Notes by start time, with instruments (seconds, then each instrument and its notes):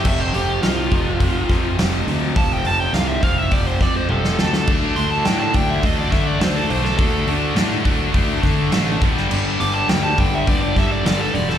Already playing: distorted electric guitar A3
0.05 picked electric bass F1, distorted electric guitar F2 C3 F3, lead electric guitar E5, kick, crash
0.20 lead electric guitar C5
0.34 picked electric bass F1, distorted electric guitar F2 C3 F3, lead electric guitar G4, open hi-hat
0.62 picked electric bass C2, distorted electric guitar F2 C3 F3, lead electric guitar F4, snare, open hi-hat
0.91 picked electric bass F1, distorted electric guitar F2 C3 F3, kick, open hi-hat
1.20 picked electric bass F1, distorted electric guitar F2 C3 F3, kick, open hi-hat
1.49 distorted electric guitar F2 C3 F3, picked electric bass F2, kick, snare, open hi-hat
1.78 picked electric bass F1, distorted electric guitar F2 C3 F3, snare, open hi-hat
2.07 picked electric bass D2, distorted electric guitar F2 C3 F3, open hi-hat
2.36 picked electric bass F1, distorted electric guitar F2 C3 F3, lead electric guitar A5, kick, open hi-hat
2.53 lead electric guitar G5
2.65 picked electric bass F1, distorted electric guitar F2 C3 F3, lead electric guitar A5, open hi-hat
2.80 lead electric guitar G5
2.93 picked electric bass C2, distorted electric guitar F2 C3 F3, lead electric guitar F5, snare, open hi-hat
3.08 lead electric guitar E5
3.22 picked electric bass F1, distorted electric guitar F2 C3 F3, lead electric guitar F5, kick, open hi-hat
3.38 lead electric guitar E5
3.50 picked electric bass F1, distorted electric guitar F2 C3 F3, lead electric guitar D5, kick, open hi-hat
3.66 lead electric guitar C5
3.81 picked electric bass F2, distorted electric guitar F2 C3 F3, lead electric guitar D5, kick, snare, open hi-hat
3.97 lead electric guitar C5
4.09 picked electric bass F1, distorted electric guitar F2 C3 F3, lead electric guitar A4, high tom
4.25 snare
4.39 picked electric bass D2, distorted electric guitar F2 C3 F3, lead electric guitar A4, snare
4.53 snare
4.67 picked electric bass D2, distorted electric guitar D3 E3 A3 D4, kick, crash
4.96 picked electric bass D2, distorted electric guitar D3 A3 D4, lead electric guitar C6, open hi-hat
5.11 lead electric guitar A5
5.25 picked electric bass A2, distorted electric guitar D3 A3 D4, lead electric guitar G5, snare, open hi-hat
5.40 lead electric guitar A5
5.54 picked electric bass D2, distorted electric guitar D3 A3 D4, lead electric guitar G5, kick, open hi-hat
5.70 lead electric guitar E5
5.83 picked electric bass D2, distorted electric guitar D3 A3 D4, lead electric guitar D#5, kick, open hi-hat
5.99 lead electric guitar D5
6.11 distorted electric guitar D3 A3 D4, picked electric bass D3, lead electric guitar E5, kick, snare, open hi-hat
6.27 lead electric guitar D5
6.41 picked electric bass D2, distorted electric guitar D3 A3 D4, lead electric guitar C5, snare, open hi-hat
6.56 lead electric guitar A4
6.70 picked electric bass B1, distorted electric guitar D3 A3 D4, lead electric guitar C5, open hi-hat
6.84 lead electric guitar A4, snare
6.98 picked electric bass D2, distorted electric guitar D3 E3 A3 D4, lead electric guitar A4, kick, open hi-hat
7.27 picked electric bass D2, distorted electric guitar D3 A3 D4, open hi-hat
7.55 picked electric bass A2, distorted electric guitar D3 A3 D4, snare, open hi-hat
7.84 picked electric bass D2, distorted electric guitar D3 A3 D4, kick, open hi-hat
8.13 picked electric bass D2, distorted electric guitar D3 A3 D4, kick, open hi-hat
8.42 distorted electric guitar D3 A3 D4, picked electric bass D3, kick, snare, open hi-hat
8.72 picked electric bass A1, distorted electric guitar D3 A3 D4, snare, open hi-hat
9.01 picked electric bass G1, distorted electric guitar G2 D3 G3 B3 D4, kick, open hi-hat
9.17 snare
9.31 picked electric bass G1, distorted electric guitar G2 D3 G3, crash
9.60 picked electric bass G1, distorted electric guitar G2 D3 G3, lead electric guitar D6, open hi-hat
9.74 lead electric guitar A5
9.88 picked electric bass D2, distorted electric guitar G2 D3 G3, lead electric guitar G5, snare, open hi-hat
10.04 lead electric guitar A5
10.18 picked electric bass G1, distorted electric guitar G2 D3 G3, lead electric guitar G5, kick, open hi-hat
10.35 lead electric guitar E5
10.47 picked electric bass G1, distorted electric guitar G2 D3 G3, lead electric guitar D5, kick, open hi-hat
10.62 lead electric guitar D5
10.76 picked electric bass G2, distorted electric guitar G2 D3 G3, lead electric guitar E5, kick, snare, open hi-hat
10.92 lead electric guitar D5
11.06 picked electric bass G1, distorted electric guitar G2 D3 G3, lead electric guitar D5, snare, open hi-hat
11.20 lead electric guitar A4
11.34 picked electric bass E1, distorted electric guitar G2 D3 G3, lead electric guitar D5, open hi-hat
11.49 lead electric guitar A4, snare